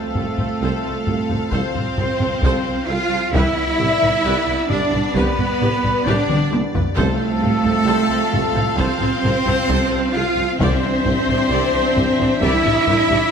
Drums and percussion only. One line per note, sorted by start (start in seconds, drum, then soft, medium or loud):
0.15 taiko low-mid medium
0.38 taiko low-mid soft
1.07 taiko low-mid medium
1.29 taiko low-mid soft
1.52 taiko medium
1.75 taiko low-mid medium
1.98 taiko low-mid medium
2.20 taiko low-mid medium
2.43 taiko medium
3.34 taiko loud
3.80 taiko low-mid medium
4.02 taiko low-mid soft
4.71 taiko low-mid medium
4.93 taiko low-mid medium
5.16 taiko medium
5.39 taiko low-mid medium
5.62 taiko low-mid medium
5.84 taiko low-mid medium
6.07 taiko low-mid loud
6.29 taiko mid medium
6.53 taiko high medium
6.75 taiko low medium
6.98 taiko loud
7.44 taiko low-mid medium
7.66 taiko low-mid soft
8.34 taiko low-mid medium
8.57 taiko low-mid medium
8.79 taiko medium
9.01 taiko low-mid medium
9.25 taiko low-mid medium
9.48 taiko low-mid soft
9.70 taiko medium
10.61 taiko loud
11.06 taiko low-mid medium
11.29 taiko low-mid medium
11.97 taiko low-mid medium
12.19 taiko low-mid medium
12.42 taiko medium
12.65 taiko low-mid medium
12.87 taiko low-mid medium
13.10 taiko low-mid medium